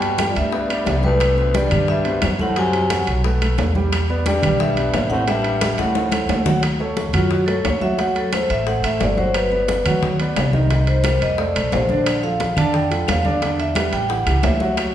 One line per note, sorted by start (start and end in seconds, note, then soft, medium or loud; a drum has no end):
0.00 0.30 G2 medium
0.00 0.27 B2 medium
0.00 0.13 G3 medium
0.00 0.13 G4 medium
0.00 0.13 G5 medium
0.00 0.26 G5 medium
0.00 high bongo soft
0.00 high conga soft
0.00 high timbale medium
0.18 0.47 G3 medium
0.18 0.47 G4 medium
0.18 0.47 G5 medium
0.18 high bongo medium
0.18 high conga medium
0.18 high timbale loud
0.18 low timbale medium
0.18 claves medium
0.29 0.36 F2 medium
0.29 0.36 D5 medium
0.36 0.83 D2 medium
0.36 1.01 G2 medium
0.36 1.00 E5 medium
0.36 high conga soft
0.36 high timbale medium
0.52 0.67 B3 medium
0.52 0.67 B4 medium
0.52 0.67 D5 medium
0.52 high bongo medium
0.52 high conga soft
0.70 0.98 B3 medium
0.70 0.98 B4 medium
0.70 0.99 D5 medium
0.70 high bongo soft
0.70 high conga soft
0.70 high timbale medium
0.70 claves medium
0.86 1.66 C2 medium
0.86 high bongo soft
0.86 low bongo medium
0.86 high conga medium
0.86 high timbale medium
0.86 low timbale medium
1.03 1.52 D2 medium
1.03 1.32 G3 medium
1.03 1.32 G4 medium
1.03 1.57 B4 medium
1.03 1.32 G5 medium
1.03 high bongo soft
1.03 high conga medium
1.20 high bongo medium
1.20 high conga soft
1.20 high timbale medium
1.20 claves medium
1.37 1.51 B3 medium
1.37 1.52 B4 medium
1.37 1.52 C5 medium
1.37 high bongo soft
1.37 high conga soft
1.54 1.87 G2 medium
1.54 1.68 G3 medium
1.54 1.68 G4 medium
1.54 1.87 D5 medium
1.54 1.68 G5 medium
1.54 high bongo medium
1.54 high conga medium
1.54 high timbale medium
1.54 low timbale medium
1.71 2.19 G2 medium
1.71 1.99 G3 medium
1.71 1.99 G4 medium
1.71 2.00 G5 medium
1.71 high conga soft
1.71 low conga medium
1.71 high timbale medium
1.71 claves medium
1.88 2.20 G2 medium
1.88 2.21 E5 loud
1.88 high bongo medium
1.88 high conga soft
2.05 2.33 B2 medium
2.05 2.34 B4 medium
2.05 2.34 C5 medium
2.05 high bongo soft
2.05 high conga soft
2.05 high timbale medium
2.22 3.02 F#2 medium
2.22 high bongo soft
2.22 low bongo medium
2.22 high conga medium
2.22 high timbale medium
2.22 low timbale medium
2.22 claves medium
2.39 2.56 A2 medium
2.39 2.54 A3 medium
2.39 2.54 A4 medium
2.39 2.54 C5 medium
2.39 2.58 F#5 loud
2.39 high bongo soft
2.39 high conga medium
2.56 3.04 C3 medium
2.56 2.84 F#3 medium
2.56 2.85 F#4 medium
2.56 2.85 F#5 medium
2.56 3.05 G#5 medium
2.56 high bongo medium
2.56 high conga soft
2.56 high timbale medium
2.73 high bongo soft
2.73 high conga soft
2.73 high timbale medium
2.90 3.18 F#3 medium
2.90 3.18 F#4 medium
2.90 3.19 F#5 medium
2.90 high bongo medium
2.90 high conga medium
2.90 high timbale loud
2.90 low timbale medium
2.90 claves medium
3.07 3.55 B1 medium
3.07 high conga soft
3.07 high timbale medium
3.24 3.38 A3 medium
3.24 3.39 A4 medium
3.24 3.39 B4 medium
3.24 high bongo medium
3.24 high conga soft
3.41 3.70 A3 medium
3.41 3.69 A4 medium
3.41 3.70 B4 medium
3.41 high bongo soft
3.41 high conga soft
3.41 high timbale medium
3.41 claves medium
3.58 4.38 E2 medium
3.58 high bongo soft
3.58 low bongo medium
3.58 high conga medium
3.58 high timbale medium
3.58 low timbale medium
3.75 4.04 G3 medium
3.75 4.04 G4 medium
3.75 4.04 G5 medium
3.75 high bongo soft
3.75 high conga medium
3.92 high bongo medium
3.92 high conga soft
3.92 high timbale medium
3.92 claves medium
4.09 4.24 B3 medium
4.09 4.24 B4 medium
4.09 4.24 D5 medium
4.09 high bongo soft
4.09 high conga soft
4.26 4.58 G2 medium
4.26 4.40 G3 medium
4.26 4.41 G4 medium
4.26 4.58 D5 medium
4.26 4.41 G5 medium
4.26 high bongo medium
4.26 high conga medium
4.26 high timbale medium
4.26 low timbale medium
4.43 4.91 B1 medium
4.43 4.72 G3 medium
4.43 4.72 G4 medium
4.43 4.72 G5 medium
4.43 high conga soft
4.43 low conga medium
4.43 high timbale medium
4.43 claves medium
4.60 5.07 G2 medium
4.60 5.13 E5 medium
4.60 high bongo medium
4.60 high conga soft
4.77 5.05 B3 medium
4.77 5.05 B4 medium
4.77 5.06 D5 medium
4.77 high bongo soft
4.77 high conga soft
4.77 high timbale medium
4.94 5.73 A1 medium
4.94 high bongo soft
4.94 low bongo medium
4.94 high conga medium
4.94 high timbale medium
4.94 low timbale medium
4.94 claves medium
5.10 5.26 A2 medium
5.10 5.25 C4 medium
5.10 5.25 C5 medium
5.10 5.26 E5 medium
5.10 5.26 F#5 loud
5.10 high bongo soft
5.10 high conga medium
5.27 5.75 G2 loud
5.27 5.56 G3 medium
5.27 5.56 G4 medium
5.27 5.75 E5 medium
5.27 5.56 G5 medium
5.27 high bongo medium
5.27 high conga soft
5.27 high timbale medium
5.44 high conga soft
5.44 high timbale medium
5.61 5.89 G3 medium
5.61 5.90 G4 medium
5.61 5.90 G5 medium
5.61 high bongo loud
5.61 high conga medium
5.61 high timbale medium
5.61 low timbale medium
5.61 claves medium
5.78 6.26 D2 medium
5.78 6.42 A2 medium
5.78 6.43 F#5 medium
5.78 high bongo medium
5.78 high conga soft
5.78 high timbale medium
5.95 6.09 A3 medium
5.95 6.10 A4 medium
5.95 6.09 C5 medium
5.95 low bongo medium
5.95 high conga soft
6.12 6.40 A3 medium
6.12 6.41 A4 medium
6.12 6.41 C5 medium
6.12 low bongo medium
6.12 high conga medium
6.12 high timbale medium
6.12 claves medium
6.29 7.08 D2 medium
6.29 low bongo loud
6.29 high timbale medium
6.29 low timbale medium
6.46 6.60 F#3 medium
6.46 6.60 F#4 medium
6.46 6.61 F#5 medium
6.46 low bongo medium
6.46 low conga medium
6.63 high bongo medium
6.63 high conga soft
6.63 high timbale medium
6.63 claves medium
6.79 7.08 A3 medium
6.79 7.08 A4 medium
6.79 7.08 C#5 medium
6.79 high bongo soft
6.79 high conga soft
6.97 high bongo soft
6.97 high conga medium
6.97 high timbale medium
6.97 low timbale medium
7.13 7.61 F#2 medium
7.13 7.42 F#3 medium
7.13 7.31 F4 medium
7.13 7.42 F#4 medium
7.13 7.42 F#5 medium
7.13 high conga soft
7.13 low conga medium
7.13 high timbale medium
7.13 claves medium
7.31 7.48 F#4 medium
7.31 high bongo medium
7.31 high conga soft
7.46 7.76 A3 medium
7.46 7.64 A4 medium
7.46 7.76 A4 medium
7.46 7.76 C#5 medium
7.46 high bongo soft
7.46 high conga soft
7.46 high timbale medium
7.65 8.44 D2 medium
7.65 7.82 C#5 medium
7.65 high bongo soft
7.65 low bongo medium
7.65 high conga medium
7.65 high timbale medium
7.65 low timbale medium
7.65 claves medium
7.81 7.96 F#3 medium
7.81 7.96 F#4 medium
7.81 7.99 E5 medium
7.81 7.96 F#5 medium
7.81 high bongo soft
7.81 high conga medium
7.98 8.27 F#3 medium
7.98 8.27 F#4 medium
7.98 8.27 F#5 medium
7.98 8.16 F#5 medium
7.98 high bongo medium
7.98 high conga soft
7.98 high timbale medium
8.15 8.33 A4 medium
8.15 high bongo soft
8.15 high conga soft
8.15 high timbale medium
8.32 8.61 A3 medium
8.32 8.61 A4 medium
8.32 8.61 C5 medium
8.32 8.50 C5 medium
8.32 high bongo medium
8.32 high conga medium
8.32 high timbale medium
8.32 low timbale medium
8.32 claves medium
8.50 8.81 A1 medium
8.50 8.67 E5 medium
8.50 high conga soft
8.50 high timbale medium
8.66 8.81 A3 medium
8.66 8.81 A4 medium
8.66 8.81 C5 medium
8.66 8.84 F#5 medium
8.66 high bongo medium
8.66 high conga soft
8.83 9.00 A1 medium
8.83 9.12 A3 medium
8.83 9.12 A4 medium
8.83 9.12 C5 medium
8.83 9.01 E5 medium
8.83 high bongo soft
8.83 high conga soft
8.83 high timbale medium
8.83 claves medium
9.00 9.80 G1 medium
9.00 9.18 D5 medium
9.00 high bongo soft
9.00 low bongo medium
9.00 high conga medium
9.00 high timbale medium
9.00 low timbale medium
9.17 9.45 F#3 medium
9.17 9.46 F#4 medium
9.17 9.34 C5 medium
9.17 9.46 F#5 medium
9.17 high bongo soft
9.17 high conga medium
9.34 9.99 B4 medium
9.34 high bongo medium
9.34 high conga soft
9.34 high timbale medium
9.34 claves medium
9.52 9.80 B3 medium
9.52 9.80 B4 medium
9.52 9.80 D5 medium
9.52 high bongo soft
9.52 high conga soft
9.68 high bongo medium
9.68 high conga medium
9.68 high timbale medium
9.68 low timbale medium
9.86 10.33 D2 medium
9.86 10.14 F#3 medium
9.86 10.14 F#4 medium
9.86 10.14 F#5 medium
9.86 high conga soft
9.86 low conga medium
9.86 high timbale medium
9.86 claves medium
10.03 high bongo medium
10.03 high conga soft
10.03 low conga medium
10.20 10.48 B3 medium
10.20 10.48 B4 medium
10.20 10.48 D5 medium
10.20 high bongo soft
10.20 high conga soft
10.20 high timbale medium
10.36 11.16 C2 medium
10.36 high bongo soft
10.36 low bongo medium
10.36 high conga medium
10.36 high timbale medium
10.36 low timbale medium
10.36 claves medium
10.53 10.68 D#3 medium
10.53 10.68 D#4 medium
10.53 10.68 D#5 medium
10.53 high bongo soft
10.53 high conga medium
10.70 10.99 D#3 medium
10.70 10.99 D#4 medium
10.70 10.99 D#5 medium
10.70 high bongo medium
10.70 high conga soft
10.70 high timbale medium
10.87 11.19 C5 medium
10.87 high bongo soft
10.87 high conga soft
10.87 high timbale medium
11.04 11.32 G3 medium
11.04 11.33 G4 medium
11.04 11.33 A#4 medium
11.04 high bongo medium
11.04 high conga medium
11.04 high timbale loud
11.04 low timbale medium
11.04 claves medium
11.21 11.53 F2 medium
11.21 11.38 D#5 loud
11.21 high conga soft
11.21 high timbale medium
11.38 11.53 A3 medium
11.38 11.53 A4 medium
11.38 11.53 C5 medium
11.38 11.70 D5 medium
11.38 high bongo medium
11.38 high conga soft
11.55 11.71 B1 medium
11.55 11.83 A3 medium
11.55 11.84 A4 medium
11.55 11.84 C5 medium
11.55 high bongo soft
11.55 high conga soft
11.55 high timbale medium
11.55 claves medium
11.72 12.51 A#1 medium
11.72 12.04 C5 medium
11.72 high bongo soft
11.72 low bongo medium
11.72 high conga medium
11.72 high timbale medium
11.72 low timbale medium
11.89 12.17 D3 medium
11.89 12.18 D4 medium
11.89 12.18 D5 medium
11.89 high bongo soft
11.89 high conga medium
12.06 high bongo medium
12.06 high conga soft
12.06 high timbale loud
12.06 claves medium
12.23 12.51 F3 medium
12.23 12.51 F4 medium
12.23 12.51 A4 medium
12.23 12.55 F5 medium
12.23 high bongo soft
12.23 high conga soft
12.40 high bongo medium
12.40 high conga medium
12.40 high timbale medium
12.40 low timbale medium
12.57 13.04 F2 medium
12.57 12.85 D3 medium
12.57 12.85 D4 medium
12.57 12.85 D5 medium
12.57 12.74 A5 loud
12.57 high conga soft
12.57 low conga medium
12.57 high timbale medium
12.57 claves medium
12.74 13.06 G5 medium
12.74 high bongo medium
12.74 high conga soft
12.91 13.19 F3 medium
12.91 13.19 F4 medium
12.91 13.19 A4 medium
12.91 high bongo soft
12.91 high conga soft
12.91 high timbale medium
13.08 13.87 E2 medium
13.08 13.40 F5 medium
13.08 high bongo soft
13.08 low bongo medium
13.08 high conga medium
13.08 high timbale loud
13.08 low timbale medium
13.08 claves medium
13.25 13.39 D3 medium
13.25 13.39 D4 medium
13.25 13.39 D5 medium
13.25 high bongo soft
13.25 high conga medium
13.42 13.70 D3 medium
13.42 13.70 D4 medium
13.42 13.70 D5 medium
13.42 high bongo medium
13.42 high conga soft
13.42 high timbale medium
13.58 13.91 E5 medium
13.58 high bongo soft
13.58 high conga soft
13.58 high timbale medium
13.75 14.04 G3 medium
13.75 14.04 G4 medium
13.75 14.04 B4 medium
13.75 high bongo medium
13.75 high conga loud
13.75 high timbale loud
13.75 low timbale medium
13.75 claves medium
13.93 14.24 A1 medium
13.93 14.09 G5 medium
13.93 high conga soft
13.93 high timbale medium
14.09 14.24 E3 medium
14.09 14.24 E4 medium
14.09 14.24 G4 medium
14.09 14.41 F#5 medium
14.09 high bongo medium
14.09 high conga soft
14.26 14.42 C#2 medium
14.26 14.54 E3 medium
14.26 14.54 E4 medium
14.26 14.55 G4 medium
14.26 high bongo soft
14.26 high conga soft
14.26 high timbale medium
14.26 claves medium
14.43 14.95 D2 medium
14.43 14.75 E5 medium
14.43 high bongo soft
14.43 low bongo medium
14.43 high conga medium
14.43 high timbale medium
14.43 low timbale medium
14.60 14.89 F#3 medium
14.60 14.89 F#4 medium
14.60 14.89 F#5 medium
14.60 high bongo soft
14.60 high conga medium
14.77 high bongo medium
14.77 high conga soft
14.77 high timbale medium
14.77 claves medium